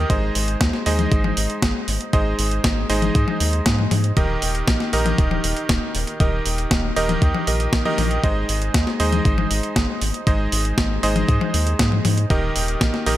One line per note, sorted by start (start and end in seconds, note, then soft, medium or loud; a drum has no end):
0.10 0.31 G#1 medium
0.10 0.83 G#3 medium
0.10 0.83 D#4 medium
0.10 0.83 G#4 medium
0.10 0.83 C5 medium
0.10 0.83 D#5 medium
0.10 kick loud
0.10 closed hi-hat medium
0.35 0.56 G#1 medium
0.35 open hi-hat loud
0.48 closed hi-hat medium
0.61 0.71 D#2 medium
0.61 kick loud
0.61 snare loud
0.61 closed hi-hat medium
0.73 snare soft
0.86 1.07 D#2 medium
0.86 2.10 G#3 medium
0.86 2.10 D#4 medium
0.86 2.10 G#4 medium
0.86 2.10 C5 medium
0.86 2.10 D#5 loud
0.86 open hi-hat medium
0.99 closed hi-hat medium
0.99 high tom medium
1.12 1.32 G#1 medium
1.12 kick loud
1.12 closed hi-hat medium
1.24 high tom medium
1.37 1.47 G#1 medium
1.37 open hi-hat loud
1.50 closed hi-hat medium
1.62 1.73 G#1 medium
1.62 kick loud
1.62 snare loud
1.62 closed hi-hat medium
1.88 1.98 G#1 medium
1.88 open hi-hat medium
2.01 closed hi-hat soft
2.13 2.34 G#1 medium
2.13 2.87 G#3 medium
2.13 2.87 D#4 medium
2.13 2.87 G#4 medium
2.13 2.87 C5 medium
2.13 2.87 D#5 medium
2.13 kick loud
2.13 closed hi-hat medium
2.39 2.60 G#1 loud
2.39 open hi-hat loud
2.51 closed hi-hat soft
2.64 2.85 G#1 medium
2.64 kick loud
2.64 snare loud
2.64 closed hi-hat medium
2.90 3.10 G#1 medium
2.90 4.14 G#3 medium
2.90 4.14 D#4 medium
2.90 4.14 G#4 medium
2.90 4.14 C5 medium
2.90 4.14 D#5 loud
2.90 open hi-hat medium
3.02 closed hi-hat medium
3.02 high tom medium
3.15 3.25 G#2 medium
3.15 kick loud
3.15 closed hi-hat medium
3.28 high tom medium
3.40 3.61 D#2 medium
3.40 open hi-hat loud
3.53 closed hi-hat medium
3.66 3.87 G#2 loud
3.66 kick loud
3.66 snare loud
3.66 closed hi-hat medium
3.79 high tom medium
3.91 4.12 G#2 loud
3.91 open hi-hat medium
3.91 high tom medium
4.04 closed hi-hat medium
4.17 4.37 D#1 loud
4.17 4.90 D#3 medium
4.17 4.90 D#4 medium
4.17 4.90 G4 medium
4.17 4.90 A#4 medium
4.17 4.90 D#5 medium
4.17 kick loud
4.17 closed hi-hat medium
4.42 4.63 D#1 medium
4.42 open hi-hat loud
4.55 closed hi-hat medium
4.68 4.78 A#1 medium
4.68 kick loud
4.68 snare loud
4.68 closed hi-hat medium
4.80 snare soft
4.93 5.14 A#1 medium
4.93 6.17 D#3 medium
4.93 6.17 D#4 medium
4.93 6.17 G4 medium
4.93 6.17 A#4 medium
4.93 6.17 D#5 loud
4.93 open hi-hat medium
5.06 closed hi-hat medium
5.06 high tom medium
5.18 5.39 D#1 medium
5.18 kick loud
5.18 closed hi-hat medium
5.31 high tom medium
5.44 5.54 D#1 medium
5.44 open hi-hat loud
5.57 closed hi-hat medium
5.69 5.80 D#1 medium
5.69 kick loud
5.69 snare loud
5.69 closed hi-hat medium
5.95 6.05 D#1 medium
5.95 open hi-hat medium
6.07 closed hi-hat soft
6.20 6.41 D#1 loud
6.20 6.93 D#3 medium
6.20 6.93 D#4 medium
6.20 6.93 G4 medium
6.20 6.93 A#4 medium
6.20 6.93 D#5 medium
6.20 kick loud
6.20 closed hi-hat medium
6.46 6.66 D#1 medium
6.46 open hi-hat loud
6.58 closed hi-hat soft
6.71 6.92 D#1 medium
6.71 kick loud
6.71 snare loud
6.71 closed hi-hat medium
6.96 7.17 D#1 medium
6.96 7.45 D#3 medium
6.96 7.45 D#4 medium
6.96 7.45 G4 medium
6.96 7.45 A#4 medium
6.96 7.45 D#5 loud
6.96 open hi-hat medium
7.09 closed hi-hat soft
7.09 high tom medium
7.22 7.32 D#2 medium
7.22 kick loud
7.22 closed hi-hat medium
7.35 high tom medium
7.47 7.68 A#1 medium
7.47 7.82 D#3 medium
7.47 7.82 D#4 medium
7.47 7.82 G4 medium
7.47 7.82 A#4 medium
7.47 7.82 D#5 medium
7.47 open hi-hat loud
7.60 closed hi-hat medium
7.73 7.83 A#1 medium
7.73 kick loud
7.73 snare loud
7.73 closed hi-hat medium
7.85 8.21 D#3 medium
7.85 8.21 D#4 medium
7.85 8.21 G4 medium
7.85 8.21 A#4 medium
7.85 8.20 D#5 loud
7.85 high tom medium
7.98 8.19 A#1 medium
7.98 open hi-hat medium
7.98 high tom medium
8.11 closed hi-hat soft
8.24 8.44 G#1 medium
8.24 8.97 G#3 medium
8.24 8.97 D#4 medium
8.24 8.97 G#4 medium
8.24 8.97 C5 medium
8.24 8.97 D#5 medium
8.24 kick loud
8.24 closed hi-hat medium
8.49 8.70 G#1 medium
8.49 open hi-hat loud
8.62 closed hi-hat soft
8.74 8.85 D#2 medium
8.74 kick loud
8.74 snare loud
8.74 closed hi-hat medium
8.87 snare soft
9.00 9.21 D#2 medium
9.00 10.24 G#3 medium
9.00 10.24 D#4 medium
9.00 10.24 G#4 medium
9.00 10.24 C5 medium
9.00 10.24 D#5 loud
9.00 open hi-hat medium
9.13 closed hi-hat soft
9.13 high tom medium
9.25 9.46 G#1 medium
9.25 kick loud
9.25 closed hi-hat medium
9.38 high tom medium
9.51 9.61 G#1 medium
9.51 open hi-hat loud
9.63 closed hi-hat soft
9.76 9.86 G#1 medium
9.76 kick loud
9.76 snare loud
9.76 closed hi-hat medium
10.02 10.12 G#1 medium
10.02 open hi-hat medium
10.14 closed hi-hat soft
10.27 10.48 G#1 medium
10.27 11.00 G#3 medium
10.27 11.00 D#4 medium
10.27 11.00 G#4 medium
10.27 11.00 C5 medium
10.27 11.00 D#5 medium
10.27 kick loud
10.27 closed hi-hat medium
10.52 10.73 G#1 loud
10.52 open hi-hat loud
10.65 closed hi-hat soft
10.78 10.98 G#1 medium
10.78 kick loud
10.78 snare loud
10.78 closed hi-hat medium
11.03 11.24 G#1 medium
11.03 12.27 G#3 medium
11.03 12.27 D#4 medium
11.03 12.27 G#4 medium
11.03 12.27 C5 medium
11.03 12.27 D#5 loud
11.03 open hi-hat medium
11.16 closed hi-hat medium
11.16 high tom medium
11.29 11.39 G#2 medium
11.29 kick loud
11.29 closed hi-hat medium
11.41 high tom medium
11.54 11.75 D#2 medium
11.54 open hi-hat loud
11.67 closed hi-hat soft
11.79 12.00 G#2 loud
11.79 kick medium
11.79 snare loud
11.79 closed hi-hat medium
11.92 high tom medium
12.05 12.26 G#2 loud
12.05 open hi-hat medium
12.05 high tom medium
12.18 closed hi-hat soft
12.30 12.51 D#1 loud
12.30 13.04 D#3 medium
12.30 13.04 D#4 medium
12.30 13.04 G4 medium
12.30 13.04 A#4 medium
12.30 13.04 D#5 medium
12.30 kick loud
12.30 closed hi-hat medium
12.56 12.76 D#1 medium
12.56 open hi-hat loud
12.68 closed hi-hat medium
12.81 12.91 A#1 medium
12.81 kick loud
12.81 snare loud
12.81 closed hi-hat medium
12.94 snare soft
13.06 13.17 A#1 medium
13.06 13.17 D#3 medium
13.06 13.17 D#4 medium
13.06 13.17 G4 medium
13.06 13.17 A#4 medium
13.06 13.17 D#5 loud
13.06 open hi-hat medium